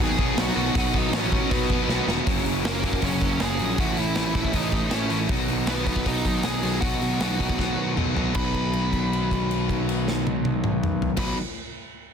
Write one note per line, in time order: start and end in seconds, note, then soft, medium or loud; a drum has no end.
0.00 0.12 D#2 medium
0.00 0.17 B2 loud
0.00 0.18 D#3 loud
0.00 0.19 F#3 loud
0.00 0.19 B3 loud
0.00 0.20 D#4 loud
0.00 0.36 G#4 medium
0.00 0.41 G#5 loud
0.19 0.31 B1 loud
0.19 0.35 B2 medium
0.19 0.36 D#3 medium
0.19 0.38 F#3 medium
0.19 0.37 B3 loud
0.19 0.37 D#4 medium
0.19 kick medium
0.37 0.50 B1 medium
0.37 0.54 B2 medium
0.37 0.55 D#3 medium
0.37 0.56 F#3 loud
0.37 0.56 B3 medium
0.37 0.56 D#4 loud
0.37 0.73 F#4 medium
0.37 snare loud
0.37 open hi-hat medium
0.41 0.75 F#5 medium
0.55 0.69 B1 medium
0.55 0.73 B2 medium
0.55 0.74 D#3 medium
0.55 0.74 F#3 medium
0.55 0.75 B3 loud
0.55 0.75 D#4 loud
0.74 0.88 B1 loud
0.74 0.92 B2 loud
0.74 0.93 D#3 loud
0.74 0.94 F#3 loud
0.74 0.94 B3 medium
0.74 0.95 D#4 loud
0.74 0.93 F#4 medium
0.74 kick loud
0.74 open hi-hat medium
0.78 0.98 F#5 medium
0.94 1.06 B1 medium
0.94 1.12 B2 loud
0.94 1.13 D#3 medium
0.94 1.13 F#3 medium
0.94 1.14 B3 medium
0.94 1.14 D#4 medium
0.94 1.13 D#4 medium
0.94 kick medium
0.98 1.16 D#5 medium
1.11 1.36 A1 medium
1.11 1.31 B2 medium
1.11 1.32 D#3 medium
1.11 1.32 F#3 medium
1.11 1.32 B3 medium
1.11 1.49 C#4 medium
1.11 snare loud
1.11 open hi-hat medium
1.15 1.33 D#4 loud
1.15 1.53 C#5 medium
1.32 1.48 B2 medium
1.32 1.49 D#3 medium
1.32 1.50 F#3 medium
1.32 1.50 B3 medium
1.32 1.51 D#4 medium
1.32 kick medium
1.49 1.69 B2 loud
1.49 1.75 B2 medium
1.49 1.69 D#3 loud
1.49 1.69 F#3 medium
1.49 1.71 B3 medium
1.49 2.04 B3 medium
1.49 1.71 D#4 loud
1.49 kick loud
1.49 open hi-hat medium
1.54 2.05 B4 medium
1.70 1.87 B2 medium
1.70 1.87 D#3 medium
1.70 1.87 F#3 medium
1.70 1.88 B3 loud
1.70 1.88 D#4 loud
1.70 kick medium
1.88 2.00 B1 medium
1.88 2.05 B2 medium
1.88 2.06 D#3 medium
1.88 2.06 F#3 loud
1.88 2.06 B3 medium
1.88 2.07 D#4 medium
1.88 snare medium
2.06 2.20 E1 medium
2.06 2.25 B2 medium
2.06 2.24 D#3 medium
2.06 2.24 F#3 medium
2.06 2.25 B3 medium
2.06 2.26 D#4 medium
2.06 snare loud
2.25 2.44 F#1 medium
2.25 2.64 F#2 loud
2.25 2.65 C#3 loud
2.25 2.62 F#3 medium
2.25 2.63 A#3 medium
2.25 2.65 C#4 loud
2.25 2.64 F#4 medium
2.25 kick loud
2.25 open hi-hat medium
2.45 2.63 F#1 medium
2.45 open hi-hat medium
2.63 2.82 F#1 medium
2.63 2.83 F#2 medium
2.63 2.84 C#3 medium
2.63 2.81 F#3 medium
2.63 2.82 A#3 medium
2.63 3.00 A#3 medium
2.63 2.83 C#4 medium
2.63 2.83 F#4 medium
2.63 snare loud
2.63 open hi-hat medium
2.67 3.05 A#4 medium
2.82 3.01 F#1 medium
2.82 3.01 F#2 medium
2.82 3.01 C#3 medium
2.82 3.00 F#3 medium
2.82 3.01 A#3 medium
2.82 3.01 C#4 medium
2.82 3.02 F#4 medium
2.82 kick medium
2.82 open hi-hat medium
2.93 kick medium
3.02 3.20 F#1 medium
3.02 3.38 F#2 medium
3.02 3.39 C#3 medium
3.02 3.38 F#3 medium
3.02 3.38 A#3 medium
3.02 3.39 C#4 medium
3.02 3.39 F#4 medium
3.02 3.39 C#5 medium
3.02 kick medium
3.02 open hi-hat medium
3.21 3.39 F#1 medium
3.21 kick medium
3.21 open hi-hat medium
3.39 3.59 F#1 medium
3.39 3.58 F#2 medium
3.39 3.59 C#3 medium
3.39 3.57 F#3 medium
3.39 3.57 A#3 medium
3.39 3.58 C#4 medium
3.39 3.58 F#4 medium
3.39 3.77 G#4 medium
3.39 snare loud
3.39 open hi-hat medium
3.44 3.78 G#5 medium
3.58 3.77 A#1 medium
3.58 3.77 F#2 medium
3.58 3.77 C#3 medium
3.58 3.77 F#3 medium
3.58 3.77 A#3 medium
3.58 3.77 C#4 medium
3.58 3.77 F#4 medium
3.58 open hi-hat medium
3.77 3.96 A1 medium
3.77 4.15 A2 medium
3.77 4.15 E3 loud
3.77 4.15 A3 medium
3.77 4.16 C#4 loud
3.77 4.16 E4 medium
3.77 3.97 F#4 medium
3.77 3.98 F#5 medium
3.77 kick loud
3.77 open hi-hat medium
3.97 4.15 A1 medium
3.97 4.51 E4 medium
3.97 4.56 E5 medium
3.97 open hi-hat soft
4.15 4.34 A1 medium
4.15 4.32 A2 medium
4.15 4.33 E3 medium
4.15 4.33 A3 medium
4.15 4.34 C#4 medium
4.15 4.34 E4 medium
4.15 snare loud
4.15 open hi-hat medium
4.33 4.53 A1 medium
4.33 4.51 A2 medium
4.33 4.52 E3 medium
4.33 4.51 A3 medium
4.33 4.52 C#4 medium
4.33 4.53 E4 medium
4.33 kick medium
4.33 open hi-hat soft
4.44 kick medium
4.52 4.72 A1 medium
4.52 4.89 A2 medium
4.52 4.89 E3 medium
4.52 4.90 A3 medium
4.52 4.90 C#4 medium
4.52 4.91 E4 loud
4.52 4.93 D#5 medium
4.52 kick medium
4.52 open hi-hat medium
4.57 4.91 D#4 medium
4.72 4.91 A1 medium
4.72 kick medium
4.72 open hi-hat soft
4.90 5.10 A1 medium
4.90 5.07 A2 medium
4.90 5.08 E3 medium
4.90 5.09 A3 medium
4.90 5.09 C#4 medium
4.90 5.10 E4 medium
4.90 snare medium
4.90 open hi-hat medium
4.94 5.20 C#4 medium
4.94 5.20 C#5 medium
5.08 5.29 A1 medium
5.08 5.27 A2 medium
5.08 5.28 E3 medium
5.08 5.28 A3 medium
5.08 5.29 C#4 medium
5.08 5.29 E4 medium
5.08 open hi-hat soft
5.28 5.48 B1 medium
5.28 5.67 B2 medium
5.28 5.66 D#3 medium
5.28 5.68 F#3 medium
5.28 5.68 B3 medium
5.28 5.68 D#4 medium
5.28 kick loud
5.28 open hi-hat medium
5.48 5.66 B1 medium
5.48 open hi-hat medium
5.67 5.86 B1 medium
5.67 5.86 B2 medium
5.67 5.86 D#3 medium
5.67 5.87 F#3 medium
5.67 5.88 B3 medium
5.67 6.04 B3 medium
5.67 5.88 D#4 medium
5.67 6.07 B4 medium
5.67 snare loud
5.67 open hi-hat medium
5.86 6.05 B1 medium
5.86 6.05 B2 medium
5.86 6.05 D#3 medium
5.86 6.07 F#3 medium
5.86 6.07 B3 medium
5.86 6.08 D#4 medium
5.86 kick medium
5.86 open hi-hat medium
5.96 kick medium
6.06 6.24 B1 medium
6.06 6.43 B2 medium
6.06 6.43 D#3 medium
6.06 6.45 F#3 medium
6.06 6.45 B3 medium
6.06 6.42 D#4 medium
6.06 6.45 D#4 medium
6.06 6.42 D#5 medium
6.06 kick medium
6.06 open hi-hat medium
6.25 6.44 B1 medium
6.25 kick medium
6.25 open hi-hat medium
6.43 6.63 B1 medium
6.43 6.61 B2 medium
6.43 6.62 D#3 medium
6.43 6.62 F#3 medium
6.43 6.63 B3 medium
6.43 6.64 D#4 medium
6.43 6.80 G#4 medium
6.43 6.80 G#5 medium
6.43 snare medium
6.43 open hi-hat medium
6.62 6.82 B1 medium
6.62 6.81 B2 medium
6.62 6.81 D#3 medium
6.62 6.82 F#3 medium
6.62 6.82 B3 medium
6.62 6.83 D#4 medium
6.62 open hi-hat medium
6.81 7.01 B1 medium
6.81 7.18 B2 medium
6.81 7.20 D#3 medium
6.81 7.19 F#3 medium
6.81 7.20 B3 medium
6.81 7.21 D#4 medium
6.81 7.92 F#4 medium
6.81 7.92 F#5 medium
6.81 kick loud
6.81 open hi-hat medium
7.02 7.20 B1 medium
7.02 open hi-hat soft
7.19 7.39 B1 medium
7.19 7.37 B2 medium
7.19 7.38 D#3 medium
7.19 7.39 F#3 medium
7.19 7.39 B3 medium
7.19 7.40 D#4 medium
7.19 snare medium
7.19 open hi-hat medium
7.39 7.58 B1 medium
7.39 7.58 B2 medium
7.39 7.58 D#3 medium
7.39 7.58 F#3 medium
7.39 7.59 B3 medium
7.39 7.60 D#4 medium
7.39 kick medium
7.39 open hi-hat soft
7.50 kick medium
7.59 7.77 B1 medium
7.59 7.95 B2 medium
7.59 7.96 D#3 medium
7.59 7.96 F#3 medium
7.59 7.97 B3 medium
7.59 7.97 D#4 medium
7.59 kick medium
7.59 snare medium
7.77 7.96 B1 medium
7.96 8.15 B1 medium
7.96 8.14 B2 medium
7.96 8.15 D#3 medium
7.96 8.15 F#3 medium
7.96 8.16 B3 medium
7.96 8.16 D#4 medium
7.96 mid tom medium
8.15 8.35 B1 medium
8.15 8.33 B2 medium
8.15 8.34 D#3 medium
8.15 8.34 F#3 medium
8.15 8.35 B3 medium
8.15 8.35 D#4 medium
8.15 floor tom medium
8.34 11.09 B1 medium
8.34 11.17 B2 medium
8.34 11.18 D#3 medium
8.34 11.19 F#3 medium
8.34 11.20 B3 medium
8.34 11.09 B5 medium
8.34 kick medium
8.34 crash medium
8.38 11.21 D#4 loud
8.54 kick medium
8.54 crash soft
8.73 crash soft
8.93 kick medium
8.93 crash soft
9.13 crash soft
9.31 kick medium
9.31 crash soft
9.51 crash soft
9.69 kick medium
9.69 crash soft
9.89 crash soft
10.08 snare medium
10.27 high tom medium
10.45 high tom medium
10.64 mid tom medium
10.83 mid tom medium
11.02 floor tom medium
11.17 11.33 B1 medium
11.17 11.35 B2 medium
11.17 11.35 D#3 medium
11.17 11.36 F#3 medium
11.17 11.36 B3 medium
11.17 11.35 B5 medium
11.17 kick loud
11.17 snare medium
11.17 crash loud
11.21 11.37 D#4 medium